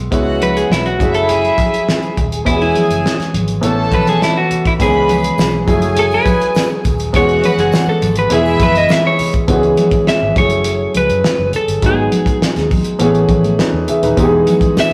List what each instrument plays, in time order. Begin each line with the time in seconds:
Already playing: grand piano G#3 B3 E4 B4
0.11 grand piano G#3 B3 C#4 E4 B4, string section F#4 F#5, kick, closed hi-hat, muted conga
0.26 muted conga
0.41 clean electric guitar B4, closed hi-hat, high conga
0.57 clean electric guitar G#4, closed hi-hat
0.70 fingered electric bass B1, clean electric guitar E4, snare, muted conga
0.85 clean electric guitar F#4, closed hi-hat, muted conga
0.98 fingered electric bass F#1, grand piano F#3 A3 C#4 E4 G#4, string section E4 E5, kick, closed hi-hat, high conga, low conga
1.14 clean electric guitar A4, closed hi-hat
1.29 clean electric guitar G#4, closed hi-hat, low conga
1.44 closed hi-hat, muted conga
1.58 kick, closed hi-hat, high conga
1.73 closed hi-hat, high conga
1.89 snare
2.02 closed hi-hat, muted conga
2.17 fingered electric bass D#1, kick, closed hi-hat, low conga
2.32 closed hi-hat
2.45 fingered electric bass E1, grand piano E3 G#3 B3 C#4 F#4, clean electric guitar E4, string section G#4 G#5, kick, closed hi-hat, muted conga
2.54 grand piano G#4
2.62 clean electric guitar E4, closed hi-hat
2.76 closed hi-hat, high conga
2.90 fingered electric bass F#1, closed hi-hat
3.04 snare, muted conga
3.19 muted fingered electric bass stroke, snare, closed hi-hat, muted conga
3.34 fingered electric bass G#1, closed hi-hat, high conga, low conga
3.48 closed hi-hat
3.61 fingered electric bass A1, grand piano E3 A3 B3 C#4 A4, string section A4 A5, closed hi-hat, muted conga, low conga
3.92 fingered electric bass B1, clean electric guitar B4, kick, closed hi-hat, high conga
4.06 clean electric guitar G#4, closed hi-hat, high conga
4.22 clean electric guitar E4, snare
4.36 clean electric guitar F#4, muted conga
4.51 closed hi-hat, low conga
4.65 clean electric guitar E4, kick, closed hi-hat
4.79 fingered electric bass C#2, grand piano D#3 G#3 B3 C#4 G#4, clean electric guitar G#4, string section B4 B5, kick, closed hi-hat, tambourine, muted conga
4.86 grand piano E3
4.93 muted conga
5.09 closed hi-hat, tambourine, high conga
5.22 closed hi-hat, tambourine
5.38 fingered electric bass B1, snare, tambourine
5.53 muted conga
5.66 fingered electric bass F#1, grand piano F#3 G#3 C#4 E4 G#4, string section G#4 G#5, kick, closed hi-hat, tambourine, high conga, low conga
5.73 grand piano A3
5.82 closed hi-hat, tambourine
5.97 clean electric guitar A4, closed hi-hat, low conga
6.11 clean electric guitar B4, tambourine, muted conga
6.26 kick, closed hi-hat, tambourine, high conga
6.40 closed hi-hat, tambourine, high conga
6.55 snare, tambourine, muted conga
6.84 fingered electric bass D#1, kick, closed hi-hat, tambourine, low conga
6.98 closed hi-hat, tambourine
7.13 fingered electric bass E1, grand piano E3 G#3 B3 C#4 G#4, string section F#4 F#5, clean electric guitar C#5, kick, closed hi-hat, tambourine, muted conga
7.29 closed hi-hat
7.43 clean electric guitar B4, closed hi-hat, tambourine, high conga
7.58 fingered electric bass F#1, clean electric guitar G#4, closed hi-hat
7.72 snare, tambourine
7.87 clean electric guitar A4, muted fingered electric bass stroke, muted conga
8.01 fingered electric bass G#1, closed hi-hat, tambourine, high conga, low conga
8.16 clean electric guitar B4, closed hi-hat
8.30 fingered electric bass E1, grand piano E3 G#3 B3 E4 G#4, string section E4 E5, clean electric guitar G#4, closed hi-hat, muted conga, low conga
8.46 tambourine, muted conga
8.60 fingered electric bass F#1, clean electric guitar B4, kick, closed hi-hat, tambourine, high conga
8.74 clean electric guitar D#5, closed hi-hat, tambourine, high conga
8.89 clean electric guitar E5, snare, tambourine
9.05 clean electric guitar C#5, muted conga
9.18 open hi-hat, tambourine, low conga
9.32 kick, closed hi-hat, tambourine
9.48 fingered electric bass C#2, grand piano E3 G#3 B3 C#4 F#4, kick, closed hi-hat
9.56 grand piano G#4
9.63 closed hi-hat, muted conga
9.77 closed hi-hat, high conga
9.91 kick, closed hi-hat
10.07 clean electric guitar E5, muted fingered electric bass stroke, snare
10.21 fingered electric bass G#1, muted conga
10.35 fingered electric bass F#1, grand piano F#3 A3 C#4 E4 G#4, clean electric guitar C#5, kick, closed hi-hat, high conga, low conga
10.50 closed hi-hat
10.64 closed hi-hat, muted conga
10.80 muted conga
10.94 fingered electric bass C#2, clean electric guitar B4, closed hi-hat, high conga
11.08 fingered electric bass F#2, closed hi-hat, high conga
11.24 muted fingered electric bass stroke, snare
11.39 fingered electric bass F#1, muted conga
11.53 clean electric guitar A4, closed hi-hat, low conga
11.68 fingered electric bass G1, closed hi-hat
11.81 fingered electric bass G#1, grand piano F#3 G#3 A3 D#4 G#4, kick, closed hi-hat, muted conga
11.86 grand piano B3, clean electric guitar G#4
12.11 closed hi-hat, high conga
12.26 kick, closed hi-hat
12.41 muted fingered electric bass stroke, snare
12.55 fingered electric bass D#2, snare, closed hi-hat, muted conga
12.70 kick, open hi-hat, high conga, low conga
12.84 closed hi-hat
12.99 fingered electric bass A1, grand piano E3 A3 B3 C#4 G#4, closed hi-hat, muted conga
13.14 closed hi-hat, muted conga
13.29 fingered electric bass A1, kick, closed hi-hat, high conga
13.43 fingered electric bass A2, closed hi-hat, high conga
13.59 grand piano D#4 B4, muted fingered electric bass stroke, snare, muted conga
13.73 fingered electric bass E2
13.88 grand piano G#4 E5, closed hi-hat, low conga
14.03 fingered electric bass D#1, grand piano D#4 B4, closed hi-hat
14.17 fingered electric bass E1, grand piano E3 G#3 B3 D#4 G4, kick, closed hi-hat, tambourine, muted conga
14.25 grand piano G#4
14.33 muted conga
14.47 closed hi-hat, tambourine, high conga
14.61 kick, closed hi-hat
14.77 clean electric guitar E5, muted fingered electric bass stroke, snare, tambourine, muted conga